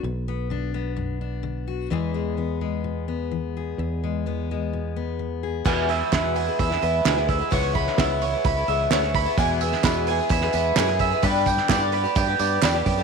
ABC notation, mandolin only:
X:1
M:4/4
L:1/8
Q:1/4=129
K:Emix
V:1 name="Mandolin"
z8 | z8 | z8 | g e B g e B g e |
c b e c b e c b | g e B g e B g e | B =g d B g d B g |]